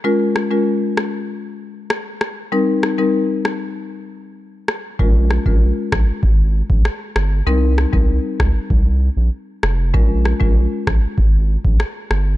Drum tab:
SD |--r---r-----r-r-|--r---r-------r-|--r---r-----r-r-|--r---r-------r-|
BD |----------------|----------------|o--o--o-o--o----|---o--o-o-------|

SD |--r---r-----r-r-|
BD |o--o--o-o--o----|